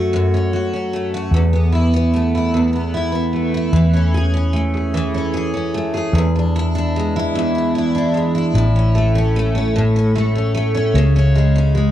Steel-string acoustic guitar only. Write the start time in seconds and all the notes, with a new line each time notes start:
Already playing: F#2 A3 C#4 F#4
0.13 F#2
0.34 C#4
0.53 F#4
0.73 C#4
0.93 A3
1.14 F#4
1.34 E2
1.53 B3
1.72 E4
1.94 B3
2.14 A3
2.35 E4
2.54 E2
2.73 B3
2.94 E4
3.12 B3
3.33 A3
3.54 E4
3.73 E3
3.94 C#4
4.14 G#4
4.34 C#4
4.53 A3
4.74 G#4
4.94 E3
5.14 C#4
5.33 G#4
5.54 C#4
5.74 A3
5.94 G#4
6.15 E2
6.35 D4
6.56 E4
6.75 D4
6.96 G#3
7.16 E4
7.35 E2
7.55 D4
7.75 E4
7.95 D4
8.14 G#3
8.35 E4
8.55 A2
8.76 C#4
8.95 A3
9.15 C#4
9.36 A3
9.55 C#4
9.76 A2
9.96 C#4
10.15 A3
10.35 C#4
10.55 A3
10.75 C#4
10.95 C#3
11.16 C#4
11.35 G#3
11.56 C#4
11.75 G#3